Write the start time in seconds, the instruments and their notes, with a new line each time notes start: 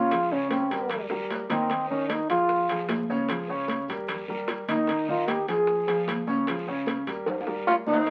Already playing: sub bass C#2, trombone F4
0.11 grand piano F3 F4 G#4, high bongo, high timbale, long guiro
0.30 grand piano C#3 C#4 C#5, trombone C#4, high bongo, high conga
0.51 trombone C4, high bongo, high conga, high timbale, short guiro
0.70 sub bass D#2, grand piano G3 G4 A#4, high bongo, high conga, high timbale, short guiro
0.90 high bongo, high conga, low conga, high timbale, long guiro
1.10 grand piano G3 G4 A#4, high bongo, high conga, low conga
1.30 sub bass G#1, high conga, high timbale, low timbale, short guiro
1.50 grand piano D#3 D#4 D#5, trombone C4, low bongo, high conga, high timbale, short guiro
1.70 grand piano D#3 D#4 D#5, high bongo, high conga, high timbale, long guiro
1.90 grand piano D#3 D#4 D#5, trombone C#4, high conga
2.09 trombone D#4, high bongo, high conga, high timbale, short guiro
2.29 sub bass A#1, grand piano F3 F4 G#4, trombone F4, high conga, high timbale, short guiro
2.49 high bongo, high conga, long guiro
2.69 grand piano F3 F4 G#4, high conga, high timbale
2.89 sub bass C#2, high bongo, low bongo, high conga, high timbale, low timbale, short guiro
3.09 grand piano C#3 C#4 C#5, high conga, short guiro
3.29 grand piano F3 F4 G#4, high bongo, high timbale, long guiro
3.48 grand piano C#3 C#4 C#5, high bongo, high conga
3.68 high bongo, high conga, high timbale, short guiro
3.88 sub bass D#2, grand piano G3 G4 A#4, high bongo, high conga, high timbale, short guiro
4.08 high bongo, high conga, low conga, high timbale, long guiro
4.28 grand piano G3 G4 A#4, high bongo, high conga, low conga
4.48 sub bass G#1, high bongo, low bongo, high conga, high timbale, short guiro
4.68 grand piano D#3 D#4 D#5, trombone D#4, high conga, high timbale, short guiro
4.87 grand piano D#3 D#4 D#5, high bongo, high conga, high timbale, long guiro
5.08 grand piano D#3 D#4 D#5, trombone F4, high conga
5.28 trombone G4, high bongo, high conga, high timbale, short guiro
5.47 sub bass A#1, grand piano F3 F4 G#4, trombone G#4, high conga, high timbale, short guiro
5.67 high bongo, high conga, long guiro
5.87 grand piano F3 F4 G#4, high conga, high timbale
6.07 sub bass C#2, high bongo, low bongo, high conga, high timbale, short guiro
6.27 grand piano C#3 C#4 C#5, high conga, short guiro
6.47 grand piano F3 F4 G#4, high bongo, high timbale, long guiro
6.67 grand piano C#3 C#4 C#5, high bongo, high conga
6.86 high bongo, high conga, high timbale, short guiro
7.07 sub bass D#2, grand piano G3 G4 A#4, high bongo, high conga, high timbale, short guiro
7.26 high bongo, high conga, low conga, high timbale, long guiro
7.41 high timbale
7.46 grand piano G3 G4 A#4, high bongo, high conga
7.66 sub bass G#1, tenor saxophone C#4, trombone F4, high conga, low timbale, short guiro
7.87 grand piano D#3 D#4 D#5, tenor saxophone C4, trombone D#4, low bongo, high conga, short guiro
7.93 low timbale
8.06 high bongo, high conga, long guiro